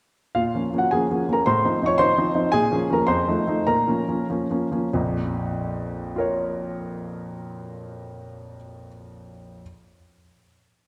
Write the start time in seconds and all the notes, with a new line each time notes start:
0.35 A#2 F4 F5
0.55 F3 A#3 C#4
0.73 F3 A#3 C#4
0.78 F#4 F#5
0.91 F3 A#3 C#4 G#4 G#5
1.11 F3 A#3 C#4
1.28 F3 A#3 C#4
1.33 A#4 A#5
1.46 A2 C5 C6
1.64 F3 C4 D#4
1.82 F3 C4 D#4 C#6
1.87 C#5
1.98 F3 C4 D#4 C5 C6
2.18 F3 C4 D#4
2.34 F3 C4 D#4
2.52 A#2 G#4 G#5
2.71 F3 A#3 C#4
2.90 F3 A#3 C#4 A#4 A#5
3.07 F2 C5 C6
3.28 F3 A3 D#4
3.47 F3 A3 D#4
3.67 A#2 A#4 A#5
3.87 F3 A#3 C#4
4.08 F3 A#3 C#4
4.30 F3 A#3 C#4
4.50 F3 A#3 C#4
4.71 F3 A#3 C#4
4.93 A#1 F2
6.16 F4 A#4 C#5